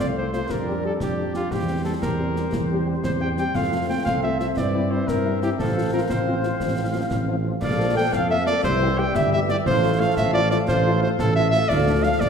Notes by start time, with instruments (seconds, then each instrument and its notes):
Already playing: trombone section A3 C4, woodwind section A4 C5
0.00 tuba C2
0.17 french horn section A3 C4 F4, flute section C5, cornet C5
0.33 french horn section A3 C4 F4, cornet C5, flute section C5, snare
0.50 tuba F2, trombone section G3 D4, woodwind section G4 D5, flute section A#4, cornet A#4, concert bass drum, snare
0.68 french horn section G3 D4 G4
0.84 french horn section G3 D4 G4, flute section A4, cornet A4
1.00 tuba F2, woodwind section G4 D5, flute section G4, cornet G4, concert bass drum, snare
1.18 french horn section G3 D4 G4
1.34 french horn section G3 D4 G4, flute section F4, cornet F4, snare
1.51 tuba E2, trombone section G3 C4, flute section G4, woodwind section G4 C5, cornet G4, concert bass drum, snare
1.69 french horn section G3 C4 G4
1.85 french horn section G3 C4 G4, cornet A4, flute section A4
2.02 tuba E2, woodwind section G4 C5, flute section A#4, cornet A#4, concert bass drum, snare
2.19 french horn section G3 C4 G4
2.36 french horn section G3 C4 G4, snare
2.52 tuba E2, concert bass drum, snare
2.71 french horn section G3 C4 G4
2.86 french horn section G3 C4 G4
3.04 tuba E2, woodwind section G4 C5, flute section C5, cornet C5, concert bass drum, snare
3.20 french horn section G3 C4 G4, flute section G5, cornet G5
3.37 french horn section G3 C4 G4, cornet G5, flute section G5, snare
3.54 tuba F2, trombone section A3 C4, woodwind section A4 C5, flute section F5, cornet F5, concert bass drum, snare, crash
3.71 french horn section A3 C4 F4
3.88 french horn section A3 C4 F4, flute section G5, cornet G5
4.05 tuba C2, woodwind section A4 C5, cornet F5, flute section F5, concert bass drum, snare
4.23 french horn section A3 C4 F4, cornet E5, flute section E5
4.40 french horn section A3 C4 F4, cornet E5, flute section E5, snare
4.57 tuba G2, trombone section E3, woodwind section C5 E5, flute section D5, cornet D5, concert bass drum, snare
4.74 french horn section G3 C4 E4
4.91 french horn section G3 C4 E4, cornet C5, flute section C5
5.08 tuba G2, cornet A#4, flute section A#4, woodwind section C5 E5, concert bass drum, snare
5.25 french horn section G3 C4 E4
5.42 french horn section G3 C4 E4, cornet G4, flute section G4, snare
5.58 tuba A1, trombone section F3 C4, cornet A4, flute section A4, woodwind section C5 F5, concert bass drum, snare
5.76 french horn section F3 C4 F4
5.93 french horn section F3 C4 F4, flute section A#4, cornet A#4
6.10 tuba A1, cornet C5, flute section C5, woodwind section C5 F5, concert bass drum, snare
6.27 french horn section F3 C4 F4
6.43 french horn section F3 C4 F4, snare
6.60 tuba A1, concert bass drum, snare
6.78 french horn section F3 C4 F4
6.94 french horn section F3 C4 F4
7.11 tuba A1, concert bass drum, snare
7.28 french horn section F3 C4 F4
7.45 french horn section F3 C4 F4
7.61 tuba A#1, trombone section F3 A3, woodwind section A4 F5, flute section D5, cornet D5, concert bass drum, snare, crash
7.78 french horn section F3 A#3 A4
7.95 french horn section F3 A#3 A4, flute section G5, cornet G5
8.12 tuba F2, woodwind section A4 F5, flute section F5, cornet F5, concert bass drum, snare
8.29 french horn section F3 A#3 A4, flute section E5, cornet E5
8.46 french horn section F3 A#3 A4, cornet D5, flute section D5, snare
8.63 tuba C2, trombone section E3 G3, woodwind section G4 E5, flute section C5, cornet C5, concert bass drum, snare
8.81 french horn section E3 G3 G4
8.98 french horn section E3 G3 G4, flute section G5, cornet G5
9.14 tuba G1, woodwind section G4 E5, flute section E5, cornet E5, concert bass drum, snare
9.32 french horn section E3 G3 G4, flute section E5, cornet E5
9.49 french horn section E3 G3 G4, cornet D5, flute section D5, snare
9.65 tuba A1, trombone section F3 A3, woodwind section A4 F5, cornet C5, flute section C5, concert bass drum, snare
9.83 french horn section F3 A3 F4
10.00 french horn section F3 A3 F4, cornet F5, flute section F5
10.16 tuba A1, cornet E5, flute section E5, concert bass drum, snare
10.33 french horn section F3 A3 F4, cornet D5, flute section D5
10.51 french horn section F3 A3 F4, cornet D5, flute section D5, snare
10.68 tuba A1, woodwind section A4 F5, cornet C5, flute section C5, concert bass drum, snare
10.85 french horn section F3 A3 F4
11.02 french horn section F3 A3 F4, cornet C5, flute section C5
11.19 tuba A1, flute section A4, cornet A4, woodwind section A4 F5, concert bass drum, snare
11.36 french horn section F3 A3 F4, cornet E5, flute section E5
11.51 french horn section F3 A3 F4, cornet E5, flute section E5, snare
11.69 tuba D2, trombone section F3 A3, woodwind section A4 F5, cornet D5, flute section D5, concert bass drum, snare, crash
11.87 french horn section F3 A3 D4
12.02 french horn section F3 A3 D4, cornet F5, flute section F5
12.20 tuba A1, woodwind section A4 F5, flute section D5, cornet D5, concert bass drum, snare